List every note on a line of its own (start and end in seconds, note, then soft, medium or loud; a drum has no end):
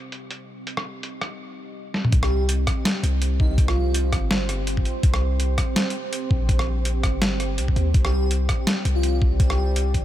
0.00 2.08 C4 medium
0.00 2.08 G4 medium
0.00 2.11 D#5 medium
0.12 closed hi-hat medium
0.31 closed hi-hat medium
0.67 closed hi-hat medium
0.77 cross-stick medium
1.03 closed hi-hat medium
1.21 cross-stick medium
1.21 closed hi-hat medium
1.94 snare medium
2.05 mid tom medium
2.12 2.66 C2 loud
2.12 10.05 C4 medium
2.12 10.05 G4 medium
2.12 7.92 C5 medium
2.12 kick loud
2.12 closed hi-hat medium
2.23 2.44 G4 medium
2.23 cross-stick medium
2.49 closed hi-hat medium
2.67 kick medium
2.67 cross-stick medium
2.67 closed hi-hat medium
2.85 snare loud
2.85 closed hi-hat medium
3.03 3.57 C2 medium
3.03 closed hi-hat medium
3.22 closed hi-hat medium
3.40 3.46 D#4 loud
3.40 kick loud
3.50 3.55 D#4 medium
3.58 4.14 C2 loud
3.58 kick loud
3.58 closed hi-hat medium
3.68 4.19 F4 medium
3.68 cross-stick medium
3.94 closed hi-hat medium
4.12 4.84 G1 medium
4.12 kick medium
4.12 cross-stick medium
4.12 closed hi-hat medium
4.31 cross-stick soft
4.31 snare loud
4.49 cross-stick soft
4.49 closed hi-hat medium
4.67 closed hi-hat medium
4.77 kick medium
4.85 closed hi-hat soft
5.03 5.57 C2 loud
5.03 kick loud
5.03 closed hi-hat medium
5.14 cross-stick medium
5.40 closed hi-hat medium
5.58 kick medium
5.58 cross-stick medium
5.58 closed hi-hat medium
5.76 snare loud
5.76 closed hi-hat medium
5.90 closed hi-hat medium
6.13 closed hi-hat medium
6.31 7.05 A#1 loud
6.31 kick loud
6.49 kick loud
6.49 closed hi-hat medium
6.59 cross-stick medium
6.85 closed hi-hat medium
7.03 7.60 G1 medium
7.03 kick medium
7.03 cross-stick medium
7.03 closed hi-hat medium
7.22 cross-stick soft
7.22 snare loud
7.22 closed hi-hat medium
7.40 cross-stick soft
7.40 closed hi-hat medium
7.58 7.75 C2 medium
7.58 closed hi-hat medium
7.68 kick medium
7.76 7.93 D#2 medium
7.76 closed hi-hat soft
7.94 8.48 C2 loud
7.94 10.05 D5 medium
7.94 kick loud
7.94 closed hi-hat medium
8.04 8.26 G4 loud
8.04 cross-stick medium
8.31 closed hi-hat medium
8.49 kick medium
8.49 cross-stick medium
8.49 closed hi-hat medium
8.67 snare loud
8.67 closed hi-hat medium
8.85 9.39 C2 loud
8.85 closed hi-hat medium
8.95 9.17 F4 loud
9.03 closed hi-hat medium
9.22 kick loud
9.39 9.96 C2 loud
9.39 9.91 G4 loud
9.39 kick loud
9.39 closed hi-hat medium
9.50 cross-stick medium
9.76 closed hi-hat medium
9.94 10.05 G1 medium
9.94 kick medium
9.94 closed hi-hat medium